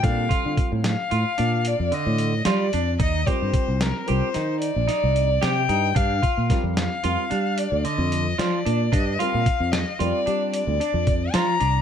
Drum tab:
HH |xxxxxxxxxxx|xxxxxxxxxxx|xxxxxxxxxxx|xxxxxxxxxxx|
SD |---o-----o-|---o-o-o-o-|--oo-----o-|---o-----o-|
BD |ooo--------|ooo--------|ooo--------|o-o-----o--|